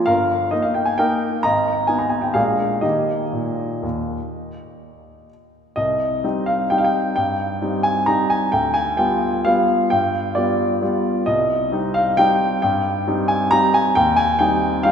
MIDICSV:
0, 0, Header, 1, 2, 480
1, 0, Start_track
1, 0, Key_signature, -3, "major"
1, 0, Tempo, 455235
1, 79, Time_signature, 3, 2, 24, 8
1, 2482, Tempo, 494234
1, 3922, Tempo, 478469
1, 5859, Key_signature, -3, "minor"
1, 6802, Tempo, 456274
1, 12562, Tempo, 443459
1, 15524, End_track
2, 0, Start_track
2, 0, Title_t, "Grand piano"
2, 0, Program_c, 0, 0
2, 60, Note_on_c, 0, 77, 79
2, 70, Note_on_c, 0, 31, 46
2, 72, Note_on_c, 0, 70, 60
2, 289, Control_c, 0, 64, 127
2, 512, Note_off_c, 0, 70, 0
2, 530, Note_off_c, 0, 31, 0
2, 538, Note_on_c, 0, 75, 58
2, 540, Note_off_c, 0, 77, 0
2, 552, Note_on_c, 0, 58, 37
2, 554, Note_on_c, 0, 63, 38
2, 562, Control_c, 0, 64, 0
2, 658, Note_on_c, 0, 77, 58
2, 664, Note_off_c, 0, 75, 0
2, 785, Note_on_c, 0, 79, 57
2, 786, Note_off_c, 0, 77, 0
2, 902, Note_on_c, 0, 80, 62
2, 911, Note_off_c, 0, 79, 0
2, 999, Note_off_c, 0, 58, 0
2, 1000, Note_off_c, 0, 63, 0
2, 1030, Note_on_c, 0, 79, 79
2, 1033, Note_off_c, 0, 80, 0
2, 1042, Note_on_c, 0, 58, 39
2, 1044, Note_on_c, 0, 70, 59
2, 1046, Note_on_c, 0, 63, 45
2, 1481, Note_off_c, 0, 58, 0
2, 1483, Note_off_c, 0, 63, 0
2, 1491, Note_off_c, 0, 70, 0
2, 1508, Note_on_c, 0, 82, 83
2, 1518, Note_off_c, 0, 79, 0
2, 1522, Note_on_c, 0, 32, 47
2, 1524, Note_on_c, 0, 75, 54
2, 1736, Control_c, 0, 64, 127
2, 1956, Note_off_c, 0, 75, 0
2, 1973, Note_off_c, 0, 32, 0
2, 1975, Note_on_c, 0, 80, 60
2, 1981, Note_off_c, 0, 82, 0
2, 1987, Note_on_c, 0, 59, 30
2, 1993, Note_on_c, 0, 63, 36
2, 2094, Note_on_c, 0, 82, 54
2, 2102, Note_off_c, 0, 80, 0
2, 2210, Note_on_c, 0, 80, 55
2, 2224, Note_off_c, 0, 82, 0
2, 2336, Note_on_c, 0, 79, 46
2, 2345, Note_off_c, 0, 80, 0
2, 2439, Note_off_c, 0, 59, 0
2, 2442, Note_off_c, 0, 63, 0
2, 2464, Note_on_c, 0, 77, 68
2, 2470, Note_on_c, 0, 56, 33
2, 2471, Note_on_c, 0, 34, 43
2, 2472, Note_off_c, 0, 79, 0
2, 2474, Note_on_c, 0, 68, 51
2, 2477, Note_on_c, 0, 58, 36
2, 2485, Note_on_c, 0, 62, 30
2, 2496, Control_c, 0, 64, 0
2, 2671, Control_c, 0, 64, 127
2, 2902, Note_off_c, 0, 56, 0
2, 2906, Note_off_c, 0, 58, 0
2, 2909, Note_off_c, 0, 62, 0
2, 2910, Note_off_c, 0, 68, 0
2, 2928, Note_off_c, 0, 34, 0
2, 2928, Note_on_c, 0, 75, 59
2, 2937, Note_on_c, 0, 51, 35
2, 2937, Note_on_c, 0, 67, 41
2, 2939, Note_off_c, 0, 77, 0
2, 2939, Note_on_c, 0, 58, 31
2, 2939, Note_on_c, 0, 63, 28
2, 2961, Control_c, 0, 64, 0
2, 3183, Control_c, 0, 64, 127
2, 3278, Note_off_c, 0, 51, 0
2, 3328, Note_off_c, 0, 58, 0
2, 3328, Note_off_c, 0, 63, 0
2, 3424, Note_on_c, 0, 46, 37
2, 3771, Note_off_c, 0, 46, 0
2, 3913, Note_on_c, 0, 39, 38
2, 3935, Control_c, 0, 64, 0
2, 4249, Note_off_c, 0, 39, 0
2, 4586, Control_c, 0, 64, 127
2, 5329, Note_off_c, 0, 67, 0
2, 5364, Note_off_c, 0, 75, 0
2, 5385, Control_c, 0, 64, 0
2, 5850, Note_on_c, 0, 75, 66
2, 5859, Note_on_c, 0, 36, 44
2, 6058, Control_c, 0, 64, 127
2, 6313, Note_off_c, 0, 36, 0
2, 6332, Note_on_c, 0, 55, 35
2, 6334, Note_on_c, 0, 60, 36
2, 6339, Note_on_c, 0, 63, 35
2, 6340, Control_c, 0, 64, 0
2, 6556, Note_on_c, 0, 77, 66
2, 6560, Note_off_c, 0, 75, 0
2, 6764, Note_off_c, 0, 55, 0
2, 6765, Note_off_c, 0, 60, 0
2, 6768, Note_off_c, 0, 63, 0
2, 6795, Note_on_c, 0, 79, 70
2, 6798, Note_off_c, 0, 77, 0
2, 6805, Note_on_c, 0, 55, 34
2, 6808, Note_on_c, 0, 60, 36
2, 6815, Note_on_c, 0, 63, 39
2, 6875, Note_off_c, 0, 79, 0
2, 6879, Note_on_c, 0, 77, 61
2, 6946, Note_on_c, 0, 79, 69
2, 6955, Note_off_c, 0, 77, 0
2, 7243, Note_off_c, 0, 55, 0
2, 7244, Note_off_c, 0, 60, 0
2, 7248, Note_off_c, 0, 63, 0
2, 7259, Note_off_c, 0, 79, 0
2, 7274, Note_on_c, 0, 79, 75
2, 7283, Note_on_c, 0, 43, 41
2, 7464, Control_c, 0, 64, 127
2, 7740, Note_off_c, 0, 43, 0
2, 7759, Note_on_c, 0, 55, 33
2, 7764, Note_on_c, 0, 60, 34
2, 7767, Note_on_c, 0, 63, 35
2, 7987, Note_on_c, 0, 80, 75
2, 7992, Note_off_c, 0, 79, 0
2, 8204, Note_off_c, 0, 55, 0
2, 8206, Note_off_c, 0, 60, 0
2, 8208, Note_off_c, 0, 63, 0
2, 8228, Note_on_c, 0, 82, 76
2, 8238, Note_on_c, 0, 55, 36
2, 8239, Note_off_c, 0, 80, 0
2, 8243, Note_on_c, 0, 60, 35
2, 8246, Note_on_c, 0, 63, 42
2, 8255, Control_c, 0, 64, 0
2, 8476, Note_on_c, 0, 80, 73
2, 8480, Note_off_c, 0, 82, 0
2, 8676, Note_off_c, 0, 55, 0
2, 8678, Note_off_c, 0, 60, 0
2, 8680, Note_off_c, 0, 63, 0
2, 8708, Note_on_c, 0, 79, 77
2, 8715, Note_off_c, 0, 80, 0
2, 8718, Note_on_c, 0, 38, 42
2, 8903, Control_c, 0, 64, 127
2, 8938, Note_on_c, 0, 80, 81
2, 8945, Note_off_c, 0, 79, 0
2, 9177, Note_off_c, 0, 38, 0
2, 9185, Note_off_c, 0, 80, 0
2, 9185, Note_on_c, 0, 79, 72
2, 9194, Note_on_c, 0, 55, 32
2, 9198, Note_on_c, 0, 59, 36
2, 9200, Note_on_c, 0, 65, 40
2, 9652, Note_off_c, 0, 55, 0
2, 9653, Note_off_c, 0, 59, 0
2, 9655, Note_off_c, 0, 65, 0
2, 9683, Note_on_c, 0, 77, 77
2, 9689, Note_off_c, 0, 79, 0
2, 9693, Note_on_c, 0, 55, 37
2, 9696, Note_on_c, 0, 59, 40
2, 9701, Note_on_c, 0, 65, 42
2, 9710, Control_c, 0, 64, 0
2, 10132, Note_off_c, 0, 55, 0
2, 10133, Note_off_c, 0, 59, 0
2, 10136, Note_off_c, 0, 65, 0
2, 10163, Note_on_c, 0, 79, 77
2, 10169, Note_off_c, 0, 77, 0
2, 10173, Note_on_c, 0, 43, 46
2, 10378, Control_c, 0, 64, 127
2, 10625, Note_off_c, 0, 43, 0
2, 10633, Note_on_c, 0, 74, 68
2, 10635, Note_off_c, 0, 79, 0
2, 10643, Note_on_c, 0, 55, 38
2, 10649, Note_on_c, 0, 59, 36
2, 10651, Note_on_c, 0, 65, 38
2, 11079, Note_off_c, 0, 55, 0
2, 11082, Note_off_c, 0, 59, 0
2, 11083, Note_off_c, 0, 65, 0
2, 11128, Note_on_c, 0, 55, 41
2, 11131, Note_on_c, 0, 59, 38
2, 11135, Control_c, 0, 64, 0
2, 11136, Note_on_c, 0, 65, 42
2, 11560, Note_off_c, 0, 55, 0
2, 11562, Note_off_c, 0, 59, 0
2, 11564, Note_off_c, 0, 65, 0
2, 11592, Note_on_c, 0, 75, 67
2, 11595, Note_off_c, 0, 74, 0
2, 11603, Note_on_c, 0, 36, 45
2, 11812, Control_c, 0, 64, 127
2, 12058, Note_off_c, 0, 36, 0
2, 12075, Note_on_c, 0, 55, 40
2, 12079, Note_on_c, 0, 60, 37
2, 12088, Note_on_c, 0, 63, 42
2, 12309, Note_on_c, 0, 77, 75
2, 12312, Note_off_c, 0, 75, 0
2, 12522, Note_off_c, 0, 55, 0
2, 12524, Note_off_c, 0, 60, 0
2, 12529, Note_off_c, 0, 63, 0
2, 12551, Note_on_c, 0, 79, 89
2, 12558, Note_off_c, 0, 77, 0
2, 12561, Note_on_c, 0, 55, 45
2, 12565, Note_on_c, 0, 60, 41
2, 12571, Note_on_c, 0, 63, 46
2, 12573, Control_c, 0, 64, 0
2, 12996, Note_off_c, 0, 55, 0
2, 12998, Note_off_c, 0, 60, 0
2, 13001, Note_off_c, 0, 63, 0
2, 13020, Note_off_c, 0, 79, 0
2, 13036, Note_on_c, 0, 79, 77
2, 13046, Note_on_c, 0, 43, 53
2, 13210, Control_c, 0, 64, 127
2, 13506, Note_off_c, 0, 43, 0
2, 13524, Note_on_c, 0, 55, 42
2, 13528, Note_on_c, 0, 60, 42
2, 13535, Note_on_c, 0, 63, 42
2, 13751, Note_on_c, 0, 80, 80
2, 13762, Note_off_c, 0, 79, 0
2, 13972, Note_off_c, 0, 55, 0
2, 13974, Note_off_c, 0, 60, 0
2, 13978, Note_off_c, 0, 63, 0
2, 13996, Note_on_c, 0, 82, 95
2, 14006, Note_off_c, 0, 80, 0
2, 14009, Note_on_c, 0, 55, 43
2, 14013, Note_on_c, 0, 60, 41
2, 14016, Note_on_c, 0, 63, 44
2, 14027, Control_c, 0, 64, 0
2, 14248, Note_on_c, 0, 80, 82
2, 14249, Note_off_c, 0, 82, 0
2, 14446, Note_off_c, 0, 55, 0
2, 14448, Note_off_c, 0, 60, 0
2, 14449, Note_off_c, 0, 63, 0
2, 14479, Note_on_c, 0, 79, 93
2, 14486, Note_off_c, 0, 80, 0
2, 14489, Note_on_c, 0, 39, 55
2, 14674, Control_c, 0, 64, 127
2, 14707, Note_on_c, 0, 80, 89
2, 14716, Note_off_c, 0, 79, 0
2, 14944, Note_off_c, 0, 39, 0
2, 14948, Note_on_c, 0, 79, 79
2, 14951, Note_off_c, 0, 80, 0
2, 14962, Note_on_c, 0, 55, 43
2, 14965, Note_on_c, 0, 60, 43
2, 14967, Note_on_c, 0, 63, 45
2, 15398, Note_off_c, 0, 55, 0
2, 15399, Note_off_c, 0, 60, 0
2, 15400, Note_off_c, 0, 63, 0
2, 15432, Note_on_c, 0, 77, 85
2, 15434, Note_off_c, 0, 79, 0
2, 15444, Note_on_c, 0, 55, 42
2, 15449, Note_on_c, 0, 60, 48
2, 15450, Note_on_c, 0, 63, 44
2, 15455, Control_c, 0, 64, 0
2, 15524, Note_off_c, 0, 55, 0
2, 15524, Note_off_c, 0, 60, 0
2, 15524, Note_off_c, 0, 63, 0
2, 15524, Note_off_c, 0, 77, 0
2, 15524, End_track
0, 0, End_of_file